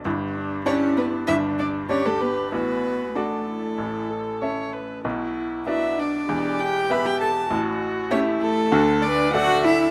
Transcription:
X:1
M:4/4
L:1/16
Q:1/4=97
K:D
V:1 name="Violin"
z4 c2 B2 e2 d2 c A B2 | B4 A8- A2 z2 | z4 e2 d4 g2 b g a2 | z4 c2 A4 d2 f2 e2 |]
V:2 name="Viola"
E2 D2 E4 D4 G4 | F4 F2 E4 A2 c2 B2 | E4 D4 G8 | F4 E4 F2 B2 A4 |]
V:3 name="Cello"
z4 C2 B,2 E2 D2 C A, B,2 | B,4 A,8- A,2 z2 | z4 E2 D4 G2 B G A2 | z4 C2 A,4 D2 F2 E2 |]
V:4 name="Grand piano"
[G,,,G,,]4 [DGd]4 [G,,,G,,]4 [DGd]4 | [A,,,A,,]4 [DFd]4 [A,,,A,,]4 [CAe]4 | [B,,,B,,]4 [B,Fd]4 [E,,,E,,]4 [B,Ge]4 | [A,,,A,,]4 [A,Ge]4 [D,,D,]4 [A,Fd]4 |]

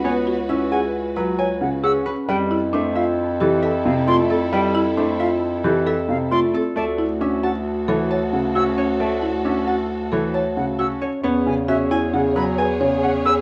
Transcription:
X:1
M:5/4
L:1/8
Q:1/4=134
K:Dlyd
V:1 name="Flute"
g z2 f z3 f e' z | =g z2 =f z3 f =c' z | =g z2 =f z3 f =c' z | a z2 f z3 f e' z |
a z2 f z3 f e' z | [K:E] z g e z f b z2 f e' |]
V:2 name="Harp"
[Bcefg]2 e g2 B g2 f B | B2 =c e2 A e2 d A | B2 =c e2 A e2 d A | d2 e a2 c a2 f c |
d2 e a2 c a2 f c | [K:E] c2 e g2 B g2 f B |]
V:3 name="String section"
[FB]8- [FB] z | [EA]8- [EA]2- | [EA]8- [EA] z | [FA]8- [FA]2- |
[FA]8- [FA] z | [K:E] [Gc]8- [Gc]2 |]
V:4 name="Marimba"
z F E G z B c z G C | z E D =F z =G A z F =C | z E D =F z =G A z F =C | z E D F z A c z F C |
z E D F z A c z F C | [K:E] C z F E G z B c z G |]
V:5 name="Grand piano" clef=bass
B, z C z2 F, z C, C z | =G, z A, z2 E, z =C, A, z | =G, z A, z2 E, z =C, A, z | A, z C z2 E, z C, C z |
A, z C z2 E, z C, C z | [K:E] B, C, C z C, F, z C, C z |]
V:6 name="Bass clarinet" clef=bass
C,,8- C,,2 | =F,,8- F,,2- | =F,,8- F,,2 | D,,8- D,,2- |
D,,8- D,,2 | [K:E] E,,8- E,,2 |]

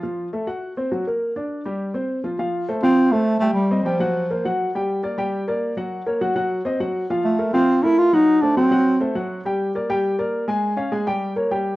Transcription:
X:1
M:4/4
L:1/8
Q:1/4=204
K:Gdor
V:1 name="Upright piano"
[F,F]2 [A,A] [_G_g]2 [Cc] [_G,G] [B,B]- | [B,B] [Dd]2 [G,G]2 [Cc]2 [F,F] | [F,Ff]2 [A,Ac] [F,Ff]2 [A,Ac]2 [G,Gg]- | [G,Gg] [Cc_e] [G,Gg] [_G,_G_g]2 [B,Bc] [G,Gg]2 |
[G,Gg]2 [B,Bd] [G,Gg]2 [B,Bd]2 [_G,_G_g]- | [_G,_G_g] [B,B_d] [G,Gg] [G,Gg]2 [Cc_e] [G,Gg]2 | [F,Ff]2 [A,AB] [F,Ff]2 [A,AB]2 [_G,_G_g]- | [_G,_G_g] [A,Ac] [^F,^F^f] [F,Ff]2 [A,Ac] [F,Ff]2 |
[G,Gg]2 [B,Bd] [G,Gg]2 [B,Bd]2 [_A,_A_a]- | [_A,_A_a] [_D_df] [A,Aa] [G,Gg]2 [B,Bd] [G,Gg]2 |]
V:2 name="Bass clarinet"
z8 | z8 | z3 C2 A,2 A, | G,2 F,4- F, z |
z8 | z8 | z A,2 C2 E F _E- | _E D C4 z2 |
z8 | z8 |]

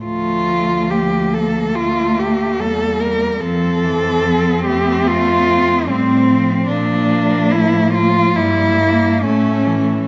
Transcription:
X:1
M:4/4
L:1/8
Q:1/4=72
K:Dm
V:1 name="Cello"
F2 G A F G A B | A3 G F2 C2 | D2 E F E2 ^C2 |]
V:2 name="Cello"
A,2 B,6 | C6 C2 | B,4 B,2 A,2 |]
V:3 name="Cello" clef=bass
F,4 A,2 G,2 | F, E, F, A,3 G, F, | F,4 G, B, A, E, |]
V:4 name="Cello" clef=bass
D,,6 E,,2 | F,,6 A,,2 | B,,2 A,,2 G,,2 A,,2 |]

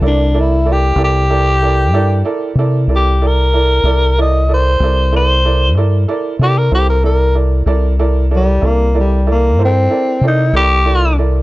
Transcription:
X:1
M:12/8
L:1/16
Q:3/8=63
K:Cmix
V:1 name="Upright piano"
[EABd]2 [EABd]2 [EABd]2 [EABd]2 [EABd]2 [EABd]2 [EABd]2 [EABd]2 [EABd]2 [EABd]2 [EABd]2 [EABd]2 | [EABd]2 [EABd]2 [EABd]2 [EABd]2 [EABd]2 [EABd]2 [EABd]2 [EABd]2 [EABd]2 [EABc]2 [EABd]2 [EABd]2 | [EABd]2 [EABd]2 [EABd]2 [EABd]2 [EABd]2 [EABd]2 [EABc]2 [EABd]2 [EABd]2 [EABd]2 [EABd]2 [EABd]2 |]
V:2 name="Tenor saxophone"
D2 E2 G2 G8 z4 G2 B4- | B2 _e2 c4 c4 z4 G B G B B2 z2 | z4 G,2 B,2 G,2 B,2 C4 _E2 G4 z2 |]
V:3 name="Fingered electric bass" clef=bass
C,,6 C,,6 G,,2 z2 C,2 C,,6 | C,,6 C,,6 G,,2 z2 C,2 C,,6 | C,,6 C,,6 G,,2 z2 C,2 C,,6 |]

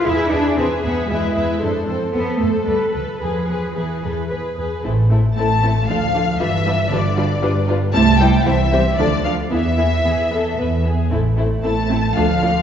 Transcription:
X:1
M:3/4
L:1/8
Q:1/4=114
K:Am
V:1 name="Violin section"
e e e e e e | c c c c B B | B B B B B B | z2 a2 f2 |
e2 d3 z | a g e2 d f | e4- e z | z2 a2 f2 |]
V:2 name="Violin section"
^G2 G2 E2 | D C A4 | ^G2 G A B G | [EA] [EA] [EA] [EA] [FA] [FA] |
[FB] [FB] [FB] [FB] [FB] [FB] | [Ec] [Ec] [Ec] [Ec] [FA] [FA] | [E^G] [EG] G A B G | [EA] [EA] [EA] [EA] [FA] [FA] |]
V:3 name="Viola section"
[^GB] [GB] [GB] [GB] [GB] [GB] | A A A A [AB] [AB] | [^GB] [GB] [GB] [GB] [GB] [GB] | [A,C] [A,C] [A,C] [A,C] [A,D] [A,D] |
[G,D] [G,D] [G,D] [G,D] [G,D] [G,D] | [G,C] [G,C] [G,C] [G,C] [F,D] [F,D] | B, B, B, B, B, B, | [A,C] [A,C] [A,C] [A,C] [A,D] [A,D] |]
V:4 name="Cello section" clef=bass
E D C B, ^G,2 | z2 B, A, G, F, | F,2 E,2 z2 | z2 A,2 F,2 |
E,2 D,3 z | A, G, E,2 D, F, | E,4- E, z | z2 A,2 F,2 |]
V:5 name="Double bass section" clef=bass
E,, E,, E,, E,, E,, E,, | F,, F,, F,, F,, D,, D,, | E,, E,, E,, E,, E,, E,, | A,,,2 A,,,2 D,,2 |
G,,,2 G,,,2 G,,,2 | C,,2 C,,2 D,,2 | E,,2 E,,2 E,,2 | A,,,2 A,,,2 D,,2 |]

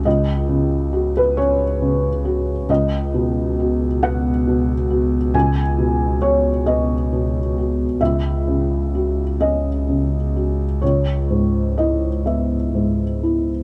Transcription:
X:1
M:6/8
L:1/16
Q:3/8=45
K:C#m
V:1 name="Felt piano"
d4- d B c6 | d6 f6 | g4 c2 d6 | e6 d6 |
c4 d2 e6 |]
V:2 name="Felt piano"
[C,,F]2 C,2 F2 C2 C,2 F2 | C,,2 B,,2 F2 B,2 B,,2 F2 | C,,2 B,,2 F2 B,2 B,,2 F2 | C,,2 C,2 F2 C2 C,2 F2 |
C,,2 G,,2 E2 B,2 G,,2 E2 |]
V:3 name="Double bass" clef=bass
C,,12 | C,,12- | C,,12 | C,,12- |
C,,12 |]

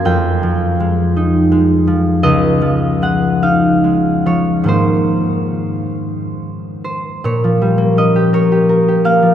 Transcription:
X:1
M:6/8
L:1/16
Q:3/8=53
K:Bbm
V:1 name="Harp"
[=ga]12 | e4 g2 f4 d2 | c8- c2 c2 | d4 e2 d4 f2 |]
V:2 name="Harp" clef=bass
[F,,F,]2 F,2 A,2 E2 A,2 F,2 | D,,2 F,2 A,2 E2 A,2 F,2 | [A,,E,B,E]12 | B,, F, =G, B, D =G B G B G B, F, |]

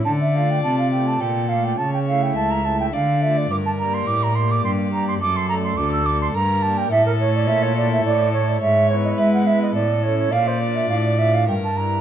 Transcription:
X:1
M:3/4
L:1/16
Q:1/4=105
K:Dm
V:1 name="Flute"
a e f g a f g a g2 f g | a g f g a b a g f2 e d | d' a b c' d' b c' d' c'2 b c' | d' c' b c' d' e' d' c' b2 a g |
e B ^c d e c d e d2 c d | e2 ^c _e =e ^f e _e d2 c c | f c d e f d e f g a b2 |]
V:2 name="Violin"
d8 A4 | ^c4 e4 d4 | B8 G4 | A4 A4 B4 |
A12 | ^c4 =B4 A4 | d8 B4 |]
V:3 name="Pipe organ"
z2 [A,Fd]4 [A,Fd]4 [A,Fd]2 | z2 [A,Ee]4 [A,Ee]2 z2 [A,Fd]2 | z2 [B,Gd]4 [B,Gd]4 [B,Gd]2 | z2 [A,Ad]4 [A,Ad]2 z2 [B,Gd]2 |
z2 [A,E^c]4 [A,Ec]4 [A,Ec]2 | z2 [=B,E=B]4 [B,EB]2 z2 [^CEA]2 | z2 [DF]4 [DF]2 z2 [DE]2 |]
V:4 name="Pipe organ" clef=bass
D,4 C,4 B,,4 | ^C,4 ^C,,4 D,4 | G,,4 A,,4 G,,4 | ^F,,4 D,,4 G,,4 |
A,,4 B,,4 A,,4 | ^G,,4 ^G,4 A,,4 | B,,4 A,,4 G,,4 |]
V:5 name="Cello" clef=bass
D,4 C,4 B,,4 | ^C,4 ^C,,4 D,4 | G,,4 A,,4 G,,4 | ^F,,4 D,,4 G,,4 |
A,,4 B,,4 A,,4 | ^G,,4 ^G,4 A,,4 | B,,4 A,,4 G,,4 |]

